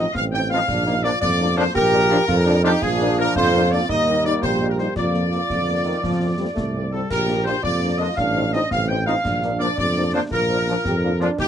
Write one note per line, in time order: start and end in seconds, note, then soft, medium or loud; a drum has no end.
0.00 0.14 F4 medium
0.00 0.14 D#5 loud
0.00 0.16 D#5 loud
0.13 0.60 A1 loud
0.13 0.70 C4 medium
0.13 0.22 F5 loud
0.13 0.24 F5 loud
0.13 concert bass drum medium
0.13 snare medium
0.32 0.39 F3 medium
0.32 0.39 C4 medium
0.32 0.40 D#4 medium
0.32 0.40 G5 loud
0.32 0.50 G5 loud
0.50 0.57 F3 medium
0.50 0.59 F3 loud
0.50 0.57 C4 medium
0.50 0.57 D#4 medium
0.50 0.60 D#4 loud
0.50 1.00 F5 loud
0.50 snare medium
0.68 1.13 A#1 loud
0.68 0.86 D4 loud
0.68 concert bass drum loud
0.68 snare medium
0.68 crash soft
0.86 0.93 F3 medium
0.86 0.93 A#3 medium
0.86 0.93 D4 medium
0.86 1.07 D#4 medium
0.86 snare medium
1.03 1.10 F3 medium
1.03 1.11 F3 medium
1.03 1.11 A#3 medium
1.03 1.10 D4 loud
1.03 1.11 D4 medium
1.03 1.74 F4 loud
1.03 1.11 D5 loud
1.03 1.20 D5 loud
1.03 snare medium
1.21 1.67 F2 loud
1.21 1.55 D5 loud
1.21 concert bass drum medium
1.21 snare medium
1.40 1.46 F3 medium
1.40 1.47 A#3 medium
1.40 1.46 D4 medium
1.57 1.64 F3 loud
1.57 1.65 F3 medium
1.57 1.64 A#3 medium
1.57 1.64 D4 loud
1.57 1.65 D4 medium
1.57 1.75 C5 loud
1.57 1.66 C5 loud
1.75 2.16 A#1 loud
1.75 2.25 G4 loud
1.75 2.60 A#4 loud
1.75 concert bass drum loud
1.75 snare medium
1.93 1.99 F3 medium
1.93 2.00 A#3 medium
1.93 2.00 D4 loud
2.10 2.17 F3 loud
2.10 2.18 F3 loud
2.10 2.17 A#3 medium
2.10 2.17 D4 loud
2.10 2.18 D4 loud
2.10 snare medium
2.28 2.74 F2 loud
2.28 2.36 F4 loud
2.28 concert bass drum medium
2.28 snare medium
2.46 2.54 F3 loud
2.46 2.54 A#3 medium
2.46 2.63 D4 loud
2.46 2.54 D4 loud
2.63 2.71 F3 loud
2.63 2.71 A#3 medium
2.63 2.71 D4 loud
2.63 2.71 D4 medium
2.63 2.84 D#4 loud
2.63 2.72 G4 loud
2.63 2.82 G4 loud
2.63 snare medium
2.81 3.28 A#1 loud
2.81 3.85 F3 loud
2.81 3.50 D4 loud
2.81 3.35 F4 loud
2.81 3.15 G#4 loud
2.81 3.18 G#4 loud
2.81 concert bass drum medium
2.81 snare medium
2.81 crash soft
3.00 3.07 F3 loud
3.00 3.07 A#3 medium
3.00 3.07 D4 loud
3.00 snare medium
3.18 3.25 F3 loud
3.18 3.25 A#3 medium
3.18 3.25 D4 medium
3.18 3.35 A#4 loud
3.18 3.27 A#4 loud
3.18 snare medium
3.36 3.81 F2 loud
3.36 3.86 F4 loud
3.36 3.69 C5 loud
3.36 concert bass drum medium
3.36 snare medium
3.53 3.61 F3 medium
3.53 3.61 A#3 loud
3.53 3.89 C4 loud
3.53 3.61 D4 medium
3.71 3.79 F3 medium
3.71 3.79 A#3 medium
3.71 3.79 D4 medium
3.71 3.89 D5 loud
3.89 4.34 D#2 medium
3.89 4.96 G3 loud
3.89 4.92 A#3 loud
3.89 4.44 D#4 loud
3.89 4.25 D#5 loud
3.89 4.23 D#5 loud
3.89 concert bass drum medium
3.89 snare medium
4.08 4.14 G3 medium
4.08 4.14 A#3 medium
4.08 4.14 D#4 medium
4.25 4.32 G3 medium
4.25 4.32 A#3 medium
4.25 4.32 D#4 medium
4.25 4.33 D5 loud
4.25 4.42 D5 loud
4.25 snare medium
4.42 4.87 A#1 loud
4.42 4.96 G4 loud
4.42 4.68 C5 loud
4.42 4.68 C5 medium
4.42 concert bass drum medium
4.42 snare medium
4.60 4.67 G3 medium
4.60 4.67 A#3 medium
4.60 4.67 D#4 medium
4.69 4.73 A#4 medium
4.69 4.79 A#4 medium
4.78 4.85 G3 medium
4.78 4.85 A#3 medium
4.78 4.86 D#4 medium
4.78 4.86 C5 medium
4.78 4.95 C5 medium
4.78 snare medium
4.96 5.41 F2 medium
4.96 5.43 F3 medium
4.96 5.43 A#3 medium
4.96 6.81 F4 medium
4.96 6.89 D5 loud
4.96 concert bass drum medium
4.96 snare medium
4.96 crash soft
5.14 5.21 F3 medium
5.14 5.21 A#3 medium
5.14 snare medium
5.32 5.38 F3 medium
5.32 5.39 A#3 medium
5.32 snare medium
5.49 5.95 F2 medium
5.49 5.83 D3 medium
5.49 concert bass drum medium
5.49 snare medium
5.67 5.74 F3 medium
5.67 5.74 A#3 medium
5.84 6.01 D#3 medium
5.84 5.92 F3 medium
5.84 5.92 A#3 medium
6.02 6.48 F2 medium
6.02 6.36 F3 medium
6.02 concert bass drum medium
6.02 snare medium
6.20 6.27 F3 medium
6.20 6.27 A3 medium
6.20 6.27 C4 medium
6.37 6.46 F3 medium
6.37 6.45 G3 medium
6.37 6.46 A3 medium
6.37 6.46 C4 medium
6.55 7.02 C2 medium
6.55 6.89 A3 medium
6.55 concert bass drum medium
6.55 snare medium
6.75 6.81 F3 medium
6.75 6.81 A3 medium
6.75 6.81 C4 medium
6.91 6.99 F3 medium
6.91 7.08 G3 medium
6.91 6.99 A3 medium
6.91 6.99 C4 medium
6.91 7.09 A4 medium
6.91 7.01 A4 medium
7.10 7.55 A#1 loud
7.10 7.64 G4 loud
7.10 7.43 A#4 loud
7.10 7.44 A#4 loud
7.10 concert bass drum medium
7.10 snare medium
7.10 crash medium
7.28 7.35 F3 medium
7.28 7.35 A#3 medium
7.28 7.35 D4 medium
7.28 snare medium
7.44 7.53 F3 medium
7.44 7.53 A#3 medium
7.44 7.53 D4 medium
7.44 7.62 C5 loud
7.44 7.63 C5 loud
7.44 snare medium
7.63 8.09 F2 medium
7.63 8.17 F4 medium
7.63 7.97 D5 loud
7.63 concert bass drum medium
7.63 snare medium
7.82 7.89 F3 medium
7.82 7.89 A#3 medium
7.82 7.89 D4 medium
7.98 8.06 F3 loud
7.98 8.06 F3 medium
7.98 8.06 A#3 medium
7.98 8.06 D4 medium
7.98 8.15 D#5 loud
7.98 8.17 D#5 loud
8.16 8.62 A1 loud
8.16 8.72 D4 loud
8.16 8.50 F5 loud
8.16 8.53 F5 loud
8.16 concert bass drum medium
8.16 snare medium
8.35 8.42 F3 medium
8.35 8.42 C4 medium
8.35 8.41 D#4 medium
8.53 8.60 F3 medium
8.53 8.60 C4 medium
8.53 8.60 D#4 medium
8.53 8.61 D#4 medium
8.53 8.71 D#5 loud
8.53 snare medium
8.71 9.16 A1 loud
8.71 9.23 C4 medium
8.71 8.88 F5 loud
8.71 8.79 F5 loud
8.71 concert bass drum medium
8.71 snare medium
8.88 8.95 F3 medium
8.88 8.95 C4 medium
8.88 8.95 D#4 medium
8.88 9.07 G5 loud
8.88 9.05 G5 loud
9.06 9.13 F3 medium
9.06 9.13 F3 loud
9.06 9.13 C4 medium
9.06 9.13 D#4 medium
9.06 9.13 D#4 loud
9.06 9.44 F5 loud
9.06 9.57 F5 loud
9.06 snare medium
9.24 9.69 A#1 medium
9.24 10.34 D4 loud
9.24 concert bass drum medium
9.24 snare medium
9.24 crash soft
9.42 9.49 F3 medium
9.42 9.49 A#3 medium
9.42 9.49 D4 medium
9.42 snare medium
9.59 9.67 F3 medium
9.59 9.66 A#3 medium
9.59 9.67 D4 medium
9.59 9.76 D5 loud
9.59 9.77 D5 loud
9.59 snare medium
9.78 10.18 F2 loud
9.78 10.11 D5 loud
9.78 10.12 D5 loud
9.78 concert bass drum medium
9.78 snare medium
9.96 10.02 F3 medium
9.96 10.02 A#3 medium
9.96 10.02 D4 medium
10.13 10.20 F3 medium
10.13 10.21 F3 loud
10.13 10.20 A#3 medium
10.13 10.20 D4 medium
10.13 10.20 D4 loud
10.13 10.21 C5 loud
10.13 10.23 C5 loud
10.31 10.76 A#1 loud
10.31 10.86 F4 loud
10.31 11.17 A#4 loud
10.31 concert bass drum medium
10.31 snare medium
10.49 10.55 F3 medium
10.49 10.55 A#3 medium
10.49 10.56 D4 medium
10.67 10.74 F3 medium
10.67 10.75 F3 medium
10.67 10.74 A#3 medium
10.67 10.74 D4 medium
10.67 10.75 D4 medium
10.67 snare medium
10.85 11.30 F2 loud
10.85 10.94 G4 loud
10.85 concert bass drum medium
10.85 snare medium
11.03 11.10 F3 medium
11.03 11.10 A#3 medium
11.03 11.10 D4 medium
11.03 11.13 F4 loud
11.20 11.27 F3 loud
11.20 11.27 F3 medium
11.20 11.27 A#3 medium
11.20 11.27 D4 medium
11.20 11.27 D4 loud
11.20 11.42 D4 loud
11.20 11.29 F4 loud
11.20 snare medium
11.38 11.48 D#2 loud
11.38 11.48 D#4 loud
11.38 11.48 G4 loud
11.38 concert bass drum medium
11.38 snare medium
11.38 crash soft